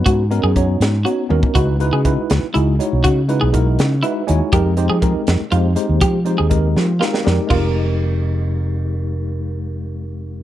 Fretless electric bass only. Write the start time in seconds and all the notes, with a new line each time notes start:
0.07 G#2
0.44 F#2
0.80 G#2
1.30 D#2
1.56 C#2
1.93 C#3
2.18 muted fretless electric bass stroke
2.31 C#2
2.56 C#2
2.93 B1
3.05 C#3
3.42 B1
3.79 C#3
4.29 D#2
4.53 F2
4.90 F3
5.15 muted fretless electric bass stroke
5.28 F2
5.41 muted fretless electric bass stroke
5.52 F2
5.89 D#2
6.02 F3
6.39 D#2
6.76 F3
7.27 F2
7.51 F1